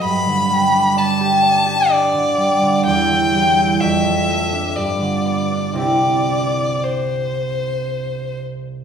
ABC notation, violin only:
X:1
M:3/4
L:1/8
Q:1/4=62
K:C
V:1 name="Violin"
b2 a2 d2 | g2 e2 d2 | d2 c3 z |]